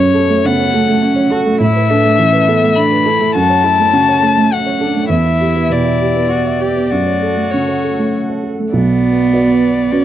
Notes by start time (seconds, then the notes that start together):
Already playing: F#2 A3 C#4 A4 C#5
0.00 C#5
0.14 A4
0.30 A3
0.45 C#3 B3 F#5
0.59 C#5
0.74 A3 A4
0.89 A3
1.03 C#4
1.16 C#5
1.31 F#4 A4
1.45 A3
1.60 A2 E4 B4 E5
1.75 B4
1.90 D4 A4
2.05 A3
2.18 E3 C#4
2.33 B4
2.48 B3 A4
2.63 A3
2.76 D4 B5
2.92 B4
3.06 E4 A4
3.21 A3
3.35 F#2 F#4 C#5 A5
3.50 C#5
3.64 E4 A4
3.80 A3
3.93 C#3 F#4
4.09 C#5
4.23 A3 A4
4.37 A3
4.51 C#4 F#5
4.66 C#5
4.81 D4 A4
4.95 A3
5.09 E2 B3 E4 G4 E5
5.25 E5
5.41 G4
5.55 B3
5.70 B2 D5
5.85 E5
6.02 G4
6.16 B3
6.30 F#4
6.46 E5
6.60 G4
6.76 B3
6.89 F#2 A3 F#4 A4 D5 F#5
7.07 C#5
7.22 A4
7.37 A3
7.51 C#3 C#5
7.69 C#5
7.84 A4
7.99 A3
8.30 C#5
8.44 A4
8.59 A3
8.73 B1 B3 F#4 B4 D5
9.33 B3 F#4 D5
9.92 B3 C#4 F#4 B4